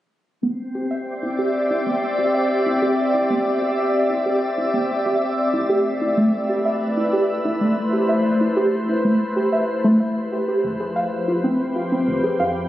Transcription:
0.43 0.49 B3 medium
0.43 6.47 C4 medium
0.75 0.89 G4 medium
0.86 6.78 G4 medium
0.91 0.97 E5 medium
1.03 7.30 D5 medium
1.13 7.50 E5 medium
1.23 1.29 E4 medium
1.39 1.48 G4 medium
1.71 1.80 E4 medium
1.86 1.92 B3 medium
2.18 2.33 G4 medium
2.34 2.40 E5 loud
2.66 2.72 E4 medium
2.82 2.92 G4 loud
3.14 3.24 E4 medium
3.30 3.36 B3 medium
3.62 3.77 G4 medium
3.78 3.84 E5 medium
4.10 4.16 E4 medium
4.26 4.36 G4 medium
4.58 4.68 E4 medium
4.74 4.80 B3 medium
5.06 5.20 G4 medium
5.22 5.28 E5 medium
5.54 10.64 A3 medium
5.54 5.59 E4 medium
5.69 5.79 G4 loud
6.02 6.11 E4 medium
6.17 6.23 A3 medium
6.17 11.47 E4 medium
6.39 12.69 B4 medium
6.49 6.64 G4 medium
6.65 6.71 E5 loud
6.97 7.03 E4 medium
7.13 7.23 G4 loud
7.45 7.55 E4 medium
7.52 12.46 C5 medium
7.61 7.67 A3 medium
7.93 8.08 G4 medium
8.09 8.15 E5 loud
8.41 8.47 E4 medium
8.57 8.66 G4 medium
8.89 8.98 E4 medium
9.05 9.10 A3 medium
9.36 9.51 G4 medium
9.53 9.58 E5 medium
9.84 9.94 A3 loud
10.00 10.10 E5 medium
10.32 10.42 G4 medium
10.48 10.63 G4 medium
10.64 11.61 F1 medium
10.64 12.69 F3 medium
10.80 10.95 G#4 medium
10.96 11.02 F5 loud
11.12 12.69 C4 medium
11.28 11.34 F4 medium
11.44 11.59 C4 medium
11.44 12.69 G4 medium
11.60 11.71 C2 medium
11.76 11.86 F4 medium
11.92 11.98 C4 medium
12.08 12.30 F1 loud
12.24 12.38 G#4 medium
12.40 12.69 F2 medium
12.40 12.46 F5 loud

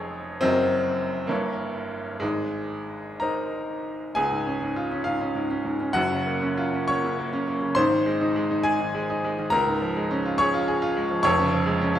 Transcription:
0.00 0.38 F1 medium
0.00 0.38 F2 medium
0.00 0.41 G#3 loud
0.00 0.38 G#4 medium
0.00 0.38 C#5 medium
0.41 1.28 F#1 medium
0.41 1.27 F#2 medium
0.41 1.29 C4 loud
0.41 1.26 F#4 medium
0.41 1.26 A#4 medium
0.41 1.27 D#5 medium
1.27 2.19 G1 medium
1.27 2.19 G2 medium
1.27 2.21 A#3 medium
1.27 2.18 E4 medium
1.27 2.18 A#4 medium
1.27 2.18 C#5 medium
2.20 4.13 G#1 medium
2.20 4.13 G#2 medium
2.20 3.21 G#3 medium
3.20 4.13 D#4 medium
3.20 4.13 A#4 medium
3.20 4.13 C5 medium
3.20 4.13 D#5 medium
3.20 4.16 A#5 medium
4.15 5.91 C#2 medium
4.15 5.02 G#4 medium
4.15 5.05 G#5 loud
4.31 4.56 G#2 medium
4.47 4.71 C#4 medium
4.62 4.86 G#2 medium
4.76 5.00 F4 medium
4.92 5.15 C#4 medium
5.04 5.30 G#2 medium
5.04 5.91 F4 medium
5.04 5.94 F5 medium
5.21 5.45 C#4 medium
5.35 5.59 G#2 medium
5.51 5.74 C#4 medium
5.65 5.89 G#2 medium
5.80 5.95 C#4 medium
5.93 7.73 F#1 medium
5.93 7.73 F#2 medium
5.93 6.85 F#4 medium
5.93 6.89 F#5 loud
6.11 6.36 C#3 medium
6.26 6.52 A#3 medium
6.42 6.68 C#4 medium
6.57 6.83 F4 medium
6.74 6.99 C#4 medium
6.88 7.14 A#3 medium
6.88 7.73 C#5 medium
6.88 7.76 C#6 loud
7.04 7.28 C#3 medium
7.19 7.42 A#3 medium
7.33 7.57 C#4 medium
7.48 7.71 A#3 medium
7.62 7.77 C#3 medium
7.75 9.48 G#1 medium
7.75 9.48 G#2 loud
7.75 8.61 C5 loud
7.75 8.64 C6 loud
7.92 8.15 D#3 medium
8.06 8.30 G#3 medium
8.21 8.45 D#4 medium
8.36 8.60 G#3 medium
8.51 8.74 D#4 medium
8.63 8.89 G#3 medium
8.63 9.48 G#4 medium
8.63 9.51 G#5 loud
8.80 9.04 D#3 medium
8.95 9.18 G#3 medium
9.10 9.33 D#4 medium
9.24 9.47 G#3 medium
9.38 9.53 D#3 medium
9.50 11.20 C#2 loud
9.50 10.35 A#4 medium
9.50 10.38 A#5 loud
9.67 9.90 G#2 medium
9.82 10.05 F3 medium
9.96 10.19 G#3 medium
10.11 10.34 C#4 medium
10.25 10.48 F4 medium
10.38 10.62 G#4 medium
10.38 11.20 C#5 medium
10.38 11.21 C#6 loud
10.54 10.76 F4 medium
10.68 10.90 G#4 medium
10.82 11.04 F4 medium
10.97 11.19 G#3 medium
11.11 11.25 F3 medium
11.23 11.99 F1 loud
11.23 11.99 F2 loud
11.23 11.99 C#5 loud
11.23 11.99 C#6 loud
11.39 11.61 C#3 medium
11.54 11.76 F3 medium
11.66 11.89 G#3 medium
11.81 11.99 C#4 medium
11.95 11.99 F4 medium

